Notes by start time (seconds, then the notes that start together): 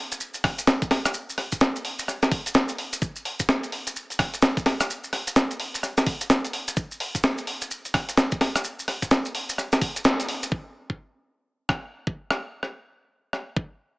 0.12 closed hi-hat, maracas
0.20 maracas
0.34 closed hi-hat, maracas
0.44 kick, cross-stick, open hi-hat
0.58 closed hi-hat, maracas
0.67 snare, maracas
0.82 kick, closed hi-hat, maracas
0.91 snare, open hi-hat
1.05 cross-stick, closed hi-hat, maracas
1.14 maracas
1.30 maracas
1.38 cross-stick, open hi-hat
1.52 kick, closed hi-hat, maracas
1.61 snare, maracas
1.76 closed hi-hat, maracas
1.85 open hi-hat
1.99 open hi-hat, maracas
2.08 cross-stick, maracas
2.23 snare, closed hi-hat, maracas
2.32 kick, open hi-hat
2.46 closed hi-hat, maracas
2.54 snare, maracas
2.68 closed hi-hat, maracas
2.78 open hi-hat
2.93 closed hi-hat, maracas
3.02 kick, maracas
3.16 maracas
3.25 open hi-hat
3.40 kick, closed hi-hat, maracas
3.49 snare, maracas
3.63 closed hi-hat, maracas
3.72 open hi-hat
3.87 closed hi-hat, maracas
3.96 maracas
4.10 closed hi-hat, maracas
4.19 kick, cross-stick, open hi-hat
4.34 closed hi-hat, maracas
4.42 snare, maracas
4.57 kick, closed hi-hat, maracas
4.66 snare, open hi-hat
4.80 cross-stick, closed hi-hat, maracas
4.90 maracas
5.04 maracas
5.13 cross-stick, open hi-hat
5.27 closed hi-hat, maracas
5.36 snare, maracas
5.51 closed hi-hat, maracas
5.60 open hi-hat
5.74 open hi-hat, maracas
5.83 cross-stick, maracas
5.97 snare, closed hi-hat, maracas
6.07 kick, open hi-hat
6.21 closed hi-hat, maracas
6.30 snare, maracas
6.45 closed hi-hat, maracas
6.53 open hi-hat
6.68 closed hi-hat, maracas
6.77 kick, maracas
6.91 maracas
7.00 open hi-hat
7.15 kick, closed hi-hat, maracas
7.23 snare, maracas
7.38 closed hi-hat, maracas
7.47 open hi-hat
7.62 closed hi-hat, maracas
7.71 maracas
7.85 closed hi-hat, maracas
7.94 kick, cross-stick, open hi-hat
8.09 closed hi-hat, maracas
8.17 snare, maracas
8.32 kick, closed hi-hat, maracas
8.41 snare, open hi-hat
8.56 cross-stick, closed hi-hat, maracas
8.64 maracas
8.79 maracas
8.88 cross-stick, open hi-hat
9.02 kick, closed hi-hat, maracas
9.11 snare, maracas
9.25 closed hi-hat, maracas
9.35 open hi-hat
9.49 open hi-hat, maracas
9.58 cross-stick, maracas
9.72 snare, closed hi-hat, maracas
9.81 kick, open hi-hat
9.96 closed hi-hat, maracas
10.04 snare, maracas
10.20 closed hi-hat, maracas
10.29 open hi-hat
10.43 closed hi-hat, maracas
10.52 kick
10.90 kick
11.69 kick, cross-stick
12.07 kick
12.30 cross-stick
12.63 cross-stick
13.33 cross-stick
13.56 kick